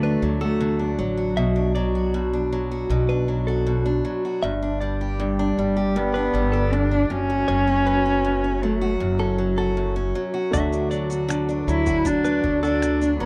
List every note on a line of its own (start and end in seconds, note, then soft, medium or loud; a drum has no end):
0.00 0.18 D2 medium
0.00 0.60 D3 medium
0.00 0.22 F#3 medium
0.00 0.42 A3 medium
0.00 0.67 A3 medium
0.00 0.79 D4 medium
0.00 0.40 F#4 medium
0.00 0.21 B4 medium
0.22 0.95 D2 medium
0.22 0.98 F#3 medium
0.41 1.02 A3 medium
0.41 1.17 F#4 medium
0.41 0.78 A4 medium
0.61 1.37 D3 medium
0.79 1.55 D4 soft
0.99 1.36 A1 medium
0.99 1.75 F#3 medium
0.99 2.53 F#3 medium
1.17 1.95 F#4 soft
1.36 2.86 B1 medium
1.36 2.13 B2 medium
1.36 1.73 E5 medium
1.56 2.33 D4 soft
1.75 2.51 F#3 medium
1.75 2.48 D5 medium
1.95 2.70 F#4 soft
2.14 2.89 B2 medium
2.33 3.09 D4 medium
2.52 3.27 F#3 medium
2.71 3.47 F#4 medium
2.90 4.01 B1 loud
2.90 3.65 B2 medium
3.09 3.85 D4 medium
3.09 3.27 B4 medium
3.28 4.03 F#3 medium
3.47 4.24 F#4 medium
3.47 3.83 A4 medium
3.67 4.43 B2 medium
3.86 4.62 D4 medium
4.05 4.51 F#3 medium
4.25 4.51 F#4 medium
4.43 5.53 G1 medium
4.43 5.18 G2 medium
4.43 4.79 E5 medium
4.63 5.38 D4 medium
4.81 5.57 G3 medium
4.81 5.53 D5 medium
5.01 5.75 G4 medium
5.20 5.95 G2 medium
5.20 5.99 G3 medium
5.39 6.14 D4 medium
5.58 6.30 G1 medium
5.58 6.33 G3 medium
5.77 6.52 G4 medium
5.96 6.72 G2 medium
5.96 6.75 B3 medium
6.14 6.90 D4 medium
6.14 6.33 B4 medium
6.34 7.06 G1 loud
6.34 7.18 G3 medium
6.52 7.18 G4 medium
6.52 6.89 A4 medium
6.73 7.10 G2 medium
6.73 7.13 D4 loud
6.91 7.18 D4 medium
7.10 7.45 F#1 medium
7.10 7.47 F#2 medium
7.10 8.65 C#4 loud
7.30 8.05 F#4 soft
7.48 8.97 F#1 medium
7.48 8.23 F#2 medium
7.48 7.84 C#5 medium
7.67 8.43 C#4 soft
7.86 8.63 F#3 soft
7.86 8.59 B4 medium
8.06 8.81 F#4 medium
8.25 8.99 F#2 medium
8.44 9.18 C#4 medium
8.63 9.38 F#3 medium
8.63 9.02 A3 medium
8.81 9.57 F#4 medium
9.00 10.12 F#1 loud
9.00 9.76 F#2 medium
9.00 10.12 F#3 medium
9.19 9.95 C#4 medium
9.19 9.38 A4 medium
9.38 10.15 F#3 medium
9.58 10.33 F#4 medium
9.58 9.94 A4 medium
9.77 10.61 F#2 medium
9.96 10.61 C#4 medium
10.15 10.91 F#3 medium
10.34 11.09 F#4 soft
10.51 11.64 D2 medium
10.51 11.28 D3 medium
10.51 13.26 A3 medium
10.51 13.26 F#4 medium
10.51 13.26 D5 medium
10.51 10.90 E5 medium
10.51 kick medium
10.51 shaker medium
10.72 11.48 D4 soft
10.72 shaker soft
10.91 11.68 F#3 medium
10.91 11.64 D5 medium
10.91 shaker soft
11.10 11.86 F#4 medium
11.10 shaker soft
11.29 12.05 D3 medium
11.29 finger snap medium
11.29 shaker medium
11.49 12.24 D4 medium
11.49 shaker soft
11.67 12.40 D2 medium
11.67 12.43 F#3 medium
11.67 12.08 E4 medium
11.67 shaker soft
11.86 12.62 F#4 medium
11.86 kick medium
11.86 shaker soft
12.05 12.82 D3 medium
12.05 12.62 D4 medium
12.05 kick medium
12.05 shaker medium
12.24 13.01 D4 medium
12.24 12.43 B4 medium
12.24 shaker medium
12.44 13.16 D2 medium
12.44 13.20 F#3 soft
12.44 kick medium
12.63 13.16 D4 medium
12.63 13.26 F#4 medium
12.63 12.99 A4 medium
12.63 finger snap soft
12.63 shaker soft
12.82 13.26 D3 medium
12.82 finger snap medium
12.82 shaker medium
13.01 13.26 D4 medium
13.01 shaker soft
13.20 13.26 A1 medium
13.20 13.26 F#3 medium
13.20 13.26 B3 medium